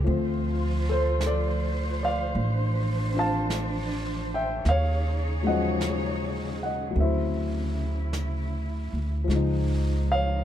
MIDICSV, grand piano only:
0, 0, Header, 1, 2, 480
1, 0, Start_track
1, 0, Tempo, 1147228
1, 28, Time_signature, 4, 2, 24, 8
1, 2429, Tempo, 1160542
1, 4346, End_track
2, 0, Start_track
2, 0, Title_t, "Grand piano"
2, 0, Program_c, 0, 0
2, 0, Control_c, 0, 64, 127
2, 0, Note_on_c, 0, 69, 48
2, 17, Note_on_c, 0, 53, 47
2, 23, Note_on_c, 0, 57, 44
2, 31, Note_on_c, 0, 60, 46
2, 35, Control_c, 0, 64, 0
2, 96, Control_c, 0, 64, 127
2, 116, Note_off_c, 0, 69, 0
2, 374, Note_on_c, 0, 69, 63
2, 383, Note_on_c, 0, 72, 84
2, 505, Note_off_c, 0, 69, 0
2, 524, Note_off_c, 0, 72, 0
2, 528, Note_on_c, 0, 69, 59
2, 531, Note_on_c, 0, 74, 78
2, 829, Note_off_c, 0, 69, 0
2, 844, Note_off_c, 0, 74, 0
2, 850, Note_on_c, 0, 74, 67
2, 857, Note_on_c, 0, 77, 85
2, 1301, Note_off_c, 0, 60, 0
2, 1307, Note_off_c, 0, 74, 0
2, 1307, Note_on_c, 0, 60, 43
2, 1310, Note_off_c, 0, 77, 0
2, 1316, Note_on_c, 0, 62, 42
2, 1324, Note_on_c, 0, 65, 46
2, 1334, Note_on_c, 0, 77, 64
2, 1335, Note_on_c, 0, 81, 97
2, 1789, Note_off_c, 0, 77, 0
2, 1817, Note_on_c, 0, 79, 80
2, 1821, Note_off_c, 0, 81, 0
2, 1821, Note_on_c, 0, 76, 72
2, 1942, Note_off_c, 0, 53, 0
2, 1943, Note_off_c, 0, 60, 0
2, 1945, Note_off_c, 0, 57, 0
2, 1948, Note_off_c, 0, 62, 0
2, 1950, Note_off_c, 0, 76, 0
2, 1952, Note_off_c, 0, 65, 0
2, 1954, Control_c, 0, 64, 0
2, 1962, Note_off_c, 0, 79, 0
2, 1962, Note_on_c, 0, 77, 93
2, 1968, Note_on_c, 0, 73, 72
2, 2036, Control_c, 0, 64, 127
2, 2268, Note_off_c, 0, 77, 0
2, 2270, Note_on_c, 0, 54, 45
2, 2271, Note_off_c, 0, 73, 0
2, 2276, Note_on_c, 0, 56, 46
2, 2285, Note_on_c, 0, 61, 44
2, 2288, Note_on_c, 0, 78, 86
2, 2291, Note_on_c, 0, 53, 57
2, 2292, Note_on_c, 0, 75, 75
2, 2746, Note_off_c, 0, 78, 0
2, 2748, Note_off_c, 0, 75, 0
2, 2770, Note_on_c, 0, 78, 71
2, 2780, Note_on_c, 0, 75, 61
2, 2878, Note_off_c, 0, 54, 0
2, 2885, Note_on_c, 0, 54, 45
2, 2899, Note_on_c, 0, 57, 35
2, 2904, Note_off_c, 0, 78, 0
2, 2908, Note_off_c, 0, 56, 0
2, 2910, Note_off_c, 0, 75, 0
2, 2912, Note_off_c, 0, 61, 0
2, 2913, Note_on_c, 0, 60, 40
2, 2915, Note_off_c, 0, 53, 0
2, 2915, Control_c, 0, 64, 0
2, 2925, Note_on_c, 0, 76, 65
2, 2931, Note_on_c, 0, 64, 44
2, 2931, Note_on_c, 0, 72, 55
2, 2982, Control_c, 0, 64, 127
2, 3711, Note_off_c, 0, 76, 0
2, 3714, Note_off_c, 0, 72, 0
2, 3851, Note_on_c, 0, 53, 54
2, 3858, Note_off_c, 0, 54, 0
2, 3866, Note_off_c, 0, 57, 0
2, 3867, Note_on_c, 0, 56, 49
2, 3873, Note_off_c, 0, 60, 0
2, 3877, Control_c, 0, 64, 0
2, 3881, Note_off_c, 0, 64, 0
2, 3896, Note_on_c, 0, 63, 56
2, 3942, Control_c, 0, 64, 127
2, 4212, Note_on_c, 0, 77, 97
2, 4223, Note_on_c, 0, 73, 64
2, 4346, Note_off_c, 0, 53, 0
2, 4346, Note_off_c, 0, 56, 0
2, 4346, Note_off_c, 0, 63, 0
2, 4346, Note_off_c, 0, 73, 0
2, 4346, Note_off_c, 0, 77, 0
2, 4346, End_track
0, 0, End_of_file